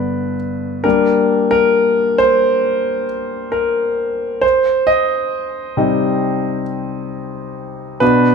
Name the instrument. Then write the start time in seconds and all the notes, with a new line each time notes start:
grand piano
Already playing: G2 D3 B3 B4
0.84 G3 A#3 D4 A#4
1.51 A#4
2.18 C5
3.52 A#4
4.41 C5
4.87 D#5
5.77 C3 G3 D#4
8.00 B2 B3 D4 B4